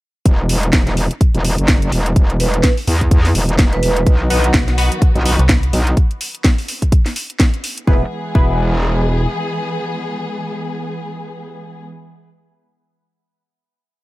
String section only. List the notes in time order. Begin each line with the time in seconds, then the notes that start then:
4.07 D#3 F#3 B3 F#4
7.88 E3 G#3 B3 G#4